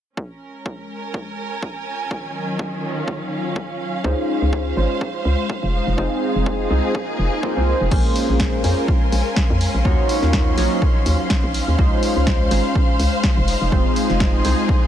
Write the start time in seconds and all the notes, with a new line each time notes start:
0.17 G#3 C#4 F4 A#4, kick
0.28 A#4
0.66 kick
0.93 G#5
1.14 kick
1.62 kick
2.11 D#3 F#3 D#4 C#5, kick
2.45 F#3
2.59 kick
2.98 F5
3.08 kick
3.56 kick
4.04 C#2 G#3 C#4 D#4 F4 G#4 C5, kick
4.19 C5
4.42 C#2
4.53 kick
4.77 G#1 C#4 D#4 F4 G#4 C5
5.01 kick
5.25 C#2
5.50 kick
5.63 F1
5.74 D#4
5.87 F1
5.97 F1 C4 D#4 F4 G#4 C5, kick
6.15 G#4
6.36 F1
6.46 kick
6.70 C2 C4 D#4 F4 G#4 C5
6.95 kick, swell
7.19 F1
7.43 C4 D#4 F4 G#4 C5, kick
7.57 C2 C4 D#4 F4 G#4 C5
7.81 F1
7.91 A#1 G#3 A#3 C#4 F4 G#4 A#4 C5 F5 C6, kick, crash
8.11 A#4
8.16 open hi-hat
8.29 A#1 G#5
8.40 kick, snare
8.64 F2 A#3 C#4 F4 G#4 C5, open hi-hat
8.88 kick
9.12 A#1, open hi-hat
9.36 kick, snare
9.50 F2
9.61 open hi-hat
9.74 A#1
9.85 D#2 F#3 A#3 C#4 D#4 F4 F#4 C#5, kick
10.06 F#3, open hi-hat
10.23 D#2, snare
10.32 F5, kick, snare
10.57 A#1 A#3 D#4 F4 F#4 C#5, open hi-hat
10.82 kick
11.06 D#2, open hi-hat
11.30 kick, snare
11.44 A#1
11.54 open hi-hat
11.68 D#2
11.78 C#2 G#3 C#4 D#4 F4 C5, kick
12.03 open hi-hat
12.16 C#2
12.27 C5, kick, snare
12.51 G#1 G#3 C#4 D#4 F4 C5, open hi-hat
12.75 kick
13.00 C#2, open hi-hat
13.23 kick, snare
13.37 F1
13.48 D#4 C5, open hi-hat
13.60 F1 G#4
13.72 F1 G#3 C4 D#4 F4 C5, kick
13.96 open hi-hat
14.10 F1, snare
14.20 kick, snare
14.44 C2 G#3 C4 D#4 F4 C5, open hi-hat
14.69 kick